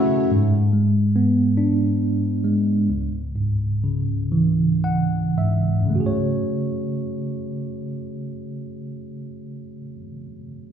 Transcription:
Already playing: string section F#2 A3 C#5, tine electric piano F#2 C#3 A3 C#4 F#4 E5 F#5, clean electric guitar E4 G#4 A4
0.32 tine electric piano G#2
0.73 tine electric piano G#3
1.16 tine electric piano B3
1.57 tine electric piano D4
2.44 tine electric piano G#3
2.90 tine electric piano C#2
3.36 tine electric piano G#2
3.84 tine electric piano C#3
4.32 tine electric piano E3
4.84 tine electric piano F#5
5.38 tine electric piano G#2 E5
5.81 tine electric piano F#2
5.85 tine electric piano C#3
5.90 tine electric piano A3
5.95 tine electric piano F#4
6.00 tine electric piano G#4
6.06 tine electric piano C#5

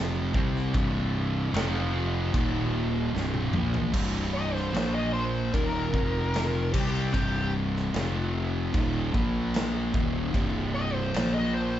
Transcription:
Already playing: fingered electric bass F1, distorted electric guitar F2 C3 F3
0.34 fingered electric bass C2, distorted electric guitar C3 G3 C4, kick
0.56 snare
0.74 fingered electric bass C1, distorted electric guitar C2 G2 C3, kick, crash
1.53 fingered electric bass F1, distorted electric guitar F2 C3 F3, snare, crash
2.34 fingered electric bass D#1, distorted electric guitar D#2 A#2 D#3, kick, crash
3.13 fingered electric bass C1, distorted electric guitar C2 G2 C3, snare
3.34 high tom
3.53 fingered electric bass A#1, distorted electric guitar A#2 F3 A#3, mid tom
3.74 floor tom
3.93 fingered electric bass C1, distorted electric guitar C2 G2 C3, kick, crash
4.34 lead electric guitar D#5
4.54 lead electric guitar C5, snare
4.73 fingered electric bass A#1, distorted electric guitar A#2 F3 A#3, crash
4.77 snare
4.95 lead electric guitar D#5
5.13 lead electric guitar C5
5.53 fingered electric bass D#1, distorted electric guitar D#2 A#2 D#3, lead electric guitar A#4, kick, crash
5.93 fingered electric bass F1, distorted electric guitar F2 C3 F3, kick
6.34 snare, crash
6.73 fingered electric bass C2, distorted electric guitar C3 G3 C4, lead electric guitar G4, kick, crash
7.13 fingered electric bass C1, distorted electric guitar C2 G2 C3, lead electric guitar G4, kick, crash
7.76 snare
7.93 fingered electric bass F1, distorted electric guitar F2 C3 F3, snare, crash
8.73 fingered electric bass D#1, distorted electric guitar D#2 A#2 D#3, kick, crash
9.13 fingered electric bass A#1, distorted electric guitar A#2 F3 A#3, kick
9.54 snare, crash
9.94 fingered electric bass D#1, distorted electric guitar D#2 A#2 D#3, kick
10.33 fingered electric bass C1, distorted electric guitar C2 G2 C3, kick, crash
10.74 lead electric guitar D#5
10.94 lead electric guitar C5
11.14 fingered electric bass A#1, distorted electric guitar A#2 F3 A#3, snare, crash
11.34 lead electric guitar D#5
11.54 lead electric guitar C5

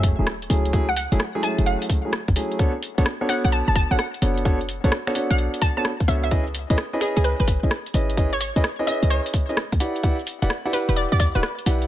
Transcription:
Already playing: 808-style bass F#2, grand piano F#3 A3 C#4 E4 G#4, sub drop
0.03 kick, open hi-hat
0.19 808-style bass E1, grand piano F#3 A3 C#4 E4 G#4
0.27 cross-stick
0.42 closed hi-hat
0.50 808-style bass C#2, grand piano F#3 A3 C#4 E4 G#4, open hi-hat
0.65 closed hi-hat
0.73 grand piano F#3 A3 C#4 E4 G#4, kick, closed hi-hat
0.89 synth pluck F#5
0.96 synth pluck F#5, open hi-hat
1.12 808-style bass F#1, grand piano F#3 A3 C#4 E4 G#4, closed hi-hat
1.20 cross-stick
1.35 grand piano F#3 A3 C#4 E4 G#4
1.43 grand piano F#3 A3 C#4 E4 G#4, synth pluck A5, open hi-hat
1.58 808-style bass F#1, closed hi-hat
1.66 synth pluck F#5, closed hi-hat
1.82 open hi-hat
1.90 kick, open hi-hat
2.05 grand piano F#3 A3 C#4 E4 G#4
2.13 cross-stick
2.28 808-style bass F#1, kick, closed hi-hat
2.36 grand piano F#3 A3 C#4 E4 G#4, open hi-hat
2.52 closed hi-hat
2.59 grand piano B3 D4 F#4 A4 C#5, kick, closed hi-hat
2.83 open hi-hat
2.98 808-style bass B1, grand piano B3 D4 F#4 A4 C#5, closed hi-hat
3.06 cross-stick
3.21 grand piano B3 D4 F#4 A4 C#5
3.29 grand piano B3 D4 F#4 A4 C#5, synth pluck F#5, finger snap, open hi-hat
3.44 808-style bass B1, synth pluck F#5, closed hi-hat
3.52 synth pluck A5, closed hi-hat
3.68 808-style bass F#1, synth pluck A5
3.75 synth pluck A5, kick, open hi-hat
3.91 808-style bass A1, grand piano B3 D4 F#4 A4 C#5, synth pluck F#5
3.99 synth pluck F#5, cross-stick
4.14 closed hi-hat
4.22 808-style bass F#1, grand piano B3 D4 F#4 A4 C#5, open hi-hat
4.38 closed hi-hat
4.45 grand piano B3 D4 F#4 A4 C#5, kick, closed hi-hat
4.61 closed hi-hat
4.69 open hi-hat
4.84 808-style bass B1, grand piano B3 D4 F#4 A4 C#5, closed hi-hat
4.92 cross-stick
5.07 grand piano B3 D4 F#4 A4 C#5, finger snap
5.15 grand piano B3 D4 F#4 A4 C#5, open hi-hat
5.30 808-style bass B1, synth pluck F#5, closed hi-hat
5.38 closed hi-hat
5.54 open hi-hat
5.62 synth pluck A5, kick, open hi-hat
5.77 grand piano B3 D4 F#4 A4 C#5, synth pluck A5
5.85 cross-stick
6.00 kick, closed hi-hat
6.08 808-style bass C#2, grand piano B3 D4 F#4 A4 C#5, synth pluck E5, open hi-hat
6.23 synth pluck E5, closed hi-hat
6.31 grand piano C#4 E4 G#4 B4 D#5, kick, closed hi-hat, shaker
6.47 shaker
6.55 open hi-hat, shaker
6.70 808-style bass C#2, grand piano C#4 E4 G#4 B4 D#5, closed hi-hat, shaker
6.78 cross-stick, shaker
6.93 grand piano C#4 E4 G#4 B4 D#5, shaker
7.01 grand piano C#4 E4 G#4 B4 D#5, synth pluck G#4, finger snap, open hi-hat, shaker
7.16 808-style bass C#2, synth pluck G#4, closed hi-hat, shaker
7.24 synth pluck B4, closed hi-hat, shaker
7.40 808-style bass G#1, synth pluck B4, shaker
7.48 kick, open hi-hat, shaker
7.63 808-style bass B1, grand piano C#4 E4 G#4 B4 D#5, shaker
7.71 cross-stick, shaker
7.86 closed hi-hat, shaker
7.94 808-style bass G#1, grand piano C#4 E4 G#4 B4 D#5, open hi-hat, shaker
8.10 closed hi-hat, shaker
8.17 grand piano C#4 E4 G#4 B4 D#5, kick, closed hi-hat, shaker
8.33 synth pluck C#5, shaker
8.41 synth pluck C#5, open hi-hat, shaker
8.56 808-style bass C#2, grand piano C#4 E4 G#4 B4 D#5, closed hi-hat, shaker
8.64 cross-stick, shaker
8.79 grand piano C#4 E4 G#4 B4 D#5, shaker
8.87 grand piano C#4 E4 G#4 B4 D#5, synth pluck E5, open hi-hat, shaker
9.03 808-style bass C#2, closed hi-hat, shaker
9.10 synth pluck C#5, closed hi-hat, shaker
9.26 open hi-hat, shaker
9.34 kick, open hi-hat, shaker
9.49 grand piano C#4 E4 G#4 B4 D#5, shaker
9.57 cross-stick, shaker
9.72 808-style bass C#2, kick, closed hi-hat, shaker
9.80 grand piano E4 G4 B4 D5 F#5, open hi-hat, shaker
9.96 closed hi-hat, shaker
10.03 grand piano E4 G4 B4 D5 F#5, kick, closed hi-hat, shaker
10.19 shaker
10.27 open hi-hat, shaker
10.42 808-style bass E1, grand piano E4 G4 B4 D5 F#5, closed hi-hat, shaker
10.50 cross-stick, shaker
10.65 grand piano E4 G4 B4 D5 F#5, shaker
10.73 grand piano E4 G4 B4 D5 F#5, synth pluck B4, open hi-hat, shaker
10.89 808-style bass E1, synth pluck B4, closed hi-hat, shaker
10.96 synth pluck D5, closed hi-hat, shaker
11.12 808-style bass E2, synth pluck D5, shaker
11.20 synth pluck D5, kick, open hi-hat, shaker
11.35 808-style bass D1, grand piano E4 G4 B4 D5 F#5, synth pluck B4, shaker
11.43 synth pluck B4, cross-stick, shaker
11.59 closed hi-hat, shaker
11.66 808-style bass B1, grand piano E4 G4 B4 D5 F#5, open hi-hat, shaker
11.82 closed hi-hat, shaker

